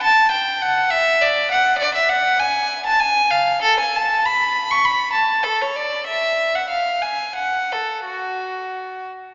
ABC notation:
X:1
M:3/4
L:1/16
Q:1/4=98
K:F#phr
V:1 name="Violin"
a2 g2 f2 e2 d2 f2 | [K:F#m] d e f2 g3 a g2 ^e2 | A g a2 b3 c' b2 a2 | A c d2 e3 f ^e2 g2 |
f2 A2 F6 z2 |]